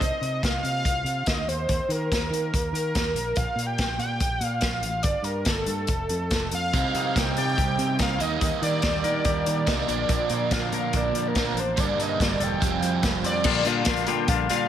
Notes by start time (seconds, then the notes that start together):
Already playing: D#5
0.01 C2, kick, closed hi-hat
0.21 C3, closed hi-hat
0.43 C2 F5, kick, snare, closed hi-hat
0.63 C3 F5, closed hi-hat
0.85 C2, kick, closed hi-hat
1.04 C3, closed hi-hat
1.26 D2 D#5, kick, snare, closed hi-hat
1.47 D#2 C5, closed hi-hat
1.69 D#2, kick, closed hi-hat
1.89 D#3 A#4, closed hi-hat
2.11 D#2, kick, snare, closed hi-hat
2.30 D#3, closed hi-hat
2.53 D#2, kick, closed hi-hat
2.73 D#3 A#4, closed hi-hat
2.95 D#2, kick, snare, closed hi-hat
3.15 A#1, closed hi-hat
3.36 A#1 F5, kick, closed hi-hat
3.56 A#2, closed hi-hat
3.66 G5
3.78 A#1, kick, snare, closed hi-hat
3.98 A#2 G5, closed hi-hat
4.20 A#1, kick, closed hi-hat
4.41 A#2, closed hi-hat
4.45 F5
4.61 A#1 F5, kick, snare, closed hi-hat
4.82 A1, closed hi-hat
5.03 G1 D5, kick, closed hi-hat
5.22 G2 A#4, closed hi-hat
5.45 G1 A4, kick, snare, closed hi-hat
5.66 G2, closed hi-hat
5.87 F1, kick, closed hi-hat
6.09 F2, closed hi-hat
6.31 F1, kick, snare, closed hi-hat
6.51 F2 F5, closed hi-hat
6.73 C2 C3 G3 C4 D#4, kick, closed hi-hat
6.94 C3 D#4, closed hi-hat
7.16 C2 G4 G5, kick, snare, closed hi-hat
7.37 C3 D5 G5, closed hi-hat
7.57 C2 G4, kick, closed hi-hat
7.78 C3 C4, closed hi-hat
7.99 C2 D#4 F5, kick, snare, closed hi-hat
8.19 D#2 D#3 G3 A#3 D#4 D#5, closed hi-hat
8.40 D#2 D#3, kick, closed hi-hat
8.61 D#3 D#4 D5, closed hi-hat
8.82 D#2 G4, kick, snare, closed hi-hat
9.04 D#3 A#4, closed hi-hat
9.24 D#2 G4, kick, closed hi-hat
9.45 D#3 A#3, closed hi-hat
9.66 C2 D#3 G3 A#3 D#4, kick, snare, closed hi-hat
9.87 A#1 A#2 D3 F3 A#3 D4 D5, closed hi-hat
10.08 A#1 A#2, kick, closed hi-hat
10.30 A#2 A#3, closed hi-hat
10.50 A#1 D4 F5, kick, snare, closed hi-hat
10.72 A#2 A#4, closed hi-hat
10.93 A#1 D4 D5, kick, closed hi-hat
11.12 A#2 F3, closed hi-hat
11.28 A#4
11.35 A#1 A#2 D3 F3 A#3 D4, kick, snare, closed hi-hat
11.54 A1 D4, closed hi-hat
11.60 C5
11.77 G1 G2 D3 G3 A#3 D4 D5, kick, closed hi-hat
11.96 G2 A#3, closed hi-hat
12.02 D#5
12.20 G1 D4 D5, kick, snare, closed hi-hat
12.39 E1 A4 G5, closed hi-hat
12.60 F1 F3 G3 C4 F4, kick, closed hi-hat
12.80 F2 F3, closed hi-hat
13.02 F1 G3, kick, snare, closed hi-hat
13.23 F2 C4 D5, closed hi-hat
13.44 A#1 A#2 D3 G3 D4 F4 A#4, kick, crash
13.64 A#2 D3 G3 D4 F4 F5, closed hi-hat
13.85 A#1 A#2 D3 G3 D4 F4, kick, snare, closed hi-hat
13.96 closed hi-hat
14.06 A#2 D3 G3 D4 F4 G5, closed hi-hat
14.27 A#1 A#2 D3 G3 D4 F4 F5, kick, closed hi-hat
14.49 A#2 D3 G3 D4 F4 F5, closed hi-hat